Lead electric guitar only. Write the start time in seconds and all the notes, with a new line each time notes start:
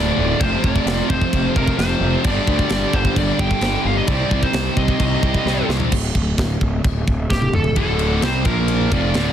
Already playing: D5
0.40 C5
0.63 D5
1.10 C5
1.56 A#4
1.77 C5
2.25 D5
2.71 D5
2.94 C5
3.17 D5
3.40 G5
3.87 F5
3.98 D#5
4.08 D5
4.43 C5
4.77 D#5
7.30 G4
7.55 A4
7.77 A4
8.23 C5
8.46 A#4
8.93 D5